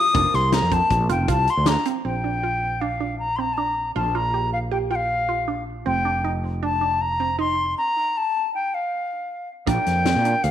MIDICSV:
0, 0, Header, 1, 6, 480
1, 0, Start_track
1, 0, Tempo, 380952
1, 192, Time_signature, 5, 2, 24, 8
1, 13241, End_track
2, 0, Start_track
2, 0, Title_t, "Flute"
2, 0, Program_c, 0, 73
2, 0, Note_on_c, 0, 87, 116
2, 440, Note_on_c, 0, 84, 109
2, 459, Note_off_c, 0, 87, 0
2, 678, Note_on_c, 0, 82, 96
2, 697, Note_off_c, 0, 84, 0
2, 921, Note_on_c, 0, 81, 99
2, 940, Note_off_c, 0, 82, 0
2, 1393, Note_off_c, 0, 81, 0
2, 1399, Note_on_c, 0, 79, 75
2, 1615, Note_off_c, 0, 79, 0
2, 1643, Note_on_c, 0, 81, 88
2, 1891, Note_on_c, 0, 84, 90
2, 1910, Note_off_c, 0, 81, 0
2, 2121, Note_on_c, 0, 82, 85
2, 2140, Note_off_c, 0, 84, 0
2, 2352, Note_off_c, 0, 82, 0
2, 2590, Note_on_c, 0, 79, 63
2, 3539, Note_on_c, 0, 77, 60
2, 3558, Note_off_c, 0, 79, 0
2, 4015, Note_off_c, 0, 77, 0
2, 4023, Note_on_c, 0, 82, 76
2, 4237, Note_on_c, 0, 84, 69
2, 4249, Note_off_c, 0, 82, 0
2, 4288, Note_on_c, 0, 82, 76
2, 4301, Note_off_c, 0, 84, 0
2, 4451, Note_on_c, 0, 81, 69
2, 4464, Note_off_c, 0, 82, 0
2, 4502, Note_on_c, 0, 82, 76
2, 4515, Note_off_c, 0, 81, 0
2, 4933, Note_off_c, 0, 82, 0
2, 4990, Note_on_c, 0, 81, 69
2, 5234, Note_on_c, 0, 82, 75
2, 5253, Note_off_c, 0, 81, 0
2, 5702, Note_off_c, 0, 82, 0
2, 5710, Note_on_c, 0, 77, 64
2, 5785, Note_off_c, 0, 77, 0
2, 5947, Note_on_c, 0, 79, 63
2, 6022, Note_off_c, 0, 79, 0
2, 6183, Note_on_c, 0, 79, 66
2, 6244, Note_on_c, 0, 77, 72
2, 6256, Note_off_c, 0, 79, 0
2, 7096, Note_off_c, 0, 77, 0
2, 7383, Note_on_c, 0, 79, 71
2, 7964, Note_off_c, 0, 79, 0
2, 8365, Note_on_c, 0, 81, 72
2, 8836, Note_on_c, 0, 82, 83
2, 8855, Note_off_c, 0, 81, 0
2, 9314, Note_off_c, 0, 82, 0
2, 9320, Note_on_c, 0, 84, 88
2, 9763, Note_off_c, 0, 84, 0
2, 9798, Note_on_c, 0, 82, 82
2, 10299, Note_on_c, 0, 81, 83
2, 10318, Note_off_c, 0, 82, 0
2, 10761, Note_off_c, 0, 81, 0
2, 10768, Note_on_c, 0, 79, 68
2, 11016, Note_on_c, 0, 77, 60
2, 11035, Note_off_c, 0, 79, 0
2, 11965, Note_off_c, 0, 77, 0
2, 12192, Note_on_c, 0, 79, 76
2, 13151, Note_on_c, 0, 77, 74
2, 13170, Note_off_c, 0, 79, 0
2, 13241, Note_off_c, 0, 77, 0
2, 13241, End_track
3, 0, Start_track
3, 0, Title_t, "Hollow-body jazz guitar"
3, 0, Program_c, 1, 26
3, 0, Note_on_c, 1, 58, 75
3, 0, Note_on_c, 1, 60, 79
3, 0, Note_on_c, 1, 70, 80
3, 138, Note_off_c, 1, 58, 0
3, 140, Note_off_c, 1, 60, 0
3, 141, Note_off_c, 1, 70, 0
3, 180, Note_on_c, 1, 58, 63
3, 185, Note_on_c, 1, 60, 60
3, 185, Note_on_c, 1, 65, 63
3, 192, Note_on_c, 1, 70, 65
3, 2529, Note_off_c, 1, 65, 0
3, 2530, Note_off_c, 1, 58, 0
3, 2532, Note_off_c, 1, 60, 0
3, 2533, Note_off_c, 1, 70, 0
3, 12178, Note_on_c, 1, 58, 58
3, 12186, Note_on_c, 1, 62, 48
3, 12192, Note_on_c, 1, 65, 49
3, 12196, Note_on_c, 1, 70, 59
3, 13241, Note_off_c, 1, 58, 0
3, 13241, Note_off_c, 1, 62, 0
3, 13241, Note_off_c, 1, 65, 0
3, 13241, Note_off_c, 1, 70, 0
3, 13241, End_track
4, 0, Start_track
4, 0, Title_t, "Synth arpeggio sound"
4, 0, Program_c, 2, 84
4, 189, Note_on_c, 2, 62, 91
4, 534, Note_off_c, 2, 62, 0
4, 663, Note_on_c, 2, 60, 86
4, 838, Note_off_c, 2, 60, 0
4, 902, Note_on_c, 2, 60, 77
4, 1249, Note_off_c, 2, 60, 0
4, 1380, Note_on_c, 2, 65, 73
4, 1554, Note_off_c, 2, 65, 0
4, 1619, Note_on_c, 2, 65, 90
4, 1966, Note_off_c, 2, 65, 0
4, 2097, Note_on_c, 2, 62, 77
4, 2272, Note_off_c, 2, 62, 0
4, 2341, Note_on_c, 2, 60, 72
4, 2515, Note_off_c, 2, 60, 0
4, 2581, Note_on_c, 2, 60, 75
4, 2754, Note_off_c, 2, 60, 0
4, 2824, Note_on_c, 2, 62, 63
4, 2996, Note_off_c, 2, 62, 0
4, 3067, Note_on_c, 2, 65, 70
4, 3411, Note_off_c, 2, 65, 0
4, 3546, Note_on_c, 2, 62, 73
4, 3718, Note_off_c, 2, 62, 0
4, 3786, Note_on_c, 2, 62, 65
4, 4131, Note_off_c, 2, 62, 0
4, 4266, Note_on_c, 2, 60, 71
4, 4438, Note_off_c, 2, 60, 0
4, 4507, Note_on_c, 2, 62, 67
4, 4852, Note_off_c, 2, 62, 0
4, 4986, Note_on_c, 2, 65, 84
4, 5158, Note_off_c, 2, 65, 0
4, 5228, Note_on_c, 2, 65, 65
4, 5400, Note_off_c, 2, 65, 0
4, 5467, Note_on_c, 2, 67, 69
4, 5812, Note_off_c, 2, 67, 0
4, 5941, Note_on_c, 2, 67, 72
4, 6116, Note_off_c, 2, 67, 0
4, 6182, Note_on_c, 2, 65, 63
4, 6530, Note_off_c, 2, 65, 0
4, 6662, Note_on_c, 2, 65, 68
4, 6837, Note_off_c, 2, 65, 0
4, 6901, Note_on_c, 2, 62, 67
4, 7250, Note_off_c, 2, 62, 0
4, 7381, Note_on_c, 2, 60, 85
4, 7557, Note_off_c, 2, 60, 0
4, 7624, Note_on_c, 2, 62, 63
4, 7799, Note_off_c, 2, 62, 0
4, 7867, Note_on_c, 2, 63, 69
4, 8214, Note_off_c, 2, 63, 0
4, 8349, Note_on_c, 2, 62, 78
4, 8523, Note_off_c, 2, 62, 0
4, 8584, Note_on_c, 2, 62, 67
4, 8932, Note_off_c, 2, 62, 0
4, 9070, Note_on_c, 2, 60, 63
4, 9244, Note_off_c, 2, 60, 0
4, 9306, Note_on_c, 2, 63, 74
4, 9654, Note_off_c, 2, 63, 0
4, 12190, Note_on_c, 2, 62, 91
4, 12537, Note_off_c, 2, 62, 0
4, 12675, Note_on_c, 2, 60, 70
4, 12848, Note_off_c, 2, 60, 0
4, 12918, Note_on_c, 2, 62, 65
4, 13241, Note_off_c, 2, 62, 0
4, 13241, End_track
5, 0, Start_track
5, 0, Title_t, "Fretless electric bass"
5, 0, Program_c, 3, 35
5, 186, Note_on_c, 3, 29, 98
5, 301, Note_off_c, 3, 29, 0
5, 427, Note_on_c, 3, 36, 84
5, 764, Note_off_c, 3, 36, 0
5, 781, Note_on_c, 3, 41, 76
5, 1009, Note_off_c, 3, 41, 0
5, 1140, Note_on_c, 3, 34, 95
5, 1367, Note_off_c, 3, 34, 0
5, 1380, Note_on_c, 3, 29, 94
5, 1607, Note_off_c, 3, 29, 0
5, 1618, Note_on_c, 3, 36, 92
5, 1846, Note_off_c, 3, 36, 0
5, 1983, Note_on_c, 3, 38, 83
5, 2208, Note_off_c, 3, 38, 0
5, 2580, Note_on_c, 3, 34, 56
5, 4934, Note_off_c, 3, 34, 0
5, 4987, Note_on_c, 3, 34, 66
5, 7341, Note_off_c, 3, 34, 0
5, 7389, Note_on_c, 3, 29, 68
5, 9744, Note_off_c, 3, 29, 0
5, 12190, Note_on_c, 3, 34, 88
5, 12304, Note_off_c, 3, 34, 0
5, 12432, Note_on_c, 3, 41, 73
5, 12771, Note_off_c, 3, 41, 0
5, 12798, Note_on_c, 3, 46, 73
5, 13022, Note_off_c, 3, 46, 0
5, 13153, Note_on_c, 3, 38, 91
5, 13241, Note_off_c, 3, 38, 0
5, 13241, End_track
6, 0, Start_track
6, 0, Title_t, "Drums"
6, 185, Note_on_c, 9, 42, 84
6, 186, Note_on_c, 9, 36, 127
6, 311, Note_off_c, 9, 42, 0
6, 312, Note_off_c, 9, 36, 0
6, 430, Note_on_c, 9, 38, 32
6, 430, Note_on_c, 9, 42, 58
6, 556, Note_off_c, 9, 38, 0
6, 556, Note_off_c, 9, 42, 0
6, 660, Note_on_c, 9, 38, 112
6, 660, Note_on_c, 9, 42, 91
6, 786, Note_off_c, 9, 38, 0
6, 786, Note_off_c, 9, 42, 0
6, 902, Note_on_c, 9, 36, 83
6, 902, Note_on_c, 9, 42, 74
6, 1028, Note_off_c, 9, 36, 0
6, 1028, Note_off_c, 9, 42, 0
6, 1141, Note_on_c, 9, 36, 97
6, 1141, Note_on_c, 9, 42, 85
6, 1267, Note_off_c, 9, 36, 0
6, 1267, Note_off_c, 9, 42, 0
6, 1377, Note_on_c, 9, 42, 69
6, 1503, Note_off_c, 9, 42, 0
6, 1617, Note_on_c, 9, 36, 99
6, 1617, Note_on_c, 9, 42, 89
6, 1743, Note_off_c, 9, 36, 0
6, 1743, Note_off_c, 9, 42, 0
6, 1857, Note_on_c, 9, 42, 64
6, 1983, Note_off_c, 9, 42, 0
6, 2089, Note_on_c, 9, 38, 109
6, 2089, Note_on_c, 9, 42, 93
6, 2215, Note_off_c, 9, 38, 0
6, 2215, Note_off_c, 9, 42, 0
6, 2335, Note_on_c, 9, 42, 67
6, 2461, Note_off_c, 9, 42, 0
6, 12188, Note_on_c, 9, 42, 80
6, 12189, Note_on_c, 9, 36, 102
6, 12314, Note_off_c, 9, 42, 0
6, 12315, Note_off_c, 9, 36, 0
6, 12429, Note_on_c, 9, 38, 29
6, 12429, Note_on_c, 9, 42, 59
6, 12555, Note_off_c, 9, 38, 0
6, 12555, Note_off_c, 9, 42, 0
6, 12668, Note_on_c, 9, 38, 98
6, 12668, Note_on_c, 9, 42, 78
6, 12794, Note_off_c, 9, 38, 0
6, 12794, Note_off_c, 9, 42, 0
6, 12914, Note_on_c, 9, 42, 60
6, 13040, Note_off_c, 9, 42, 0
6, 13149, Note_on_c, 9, 42, 74
6, 13241, Note_off_c, 9, 42, 0
6, 13241, End_track
0, 0, End_of_file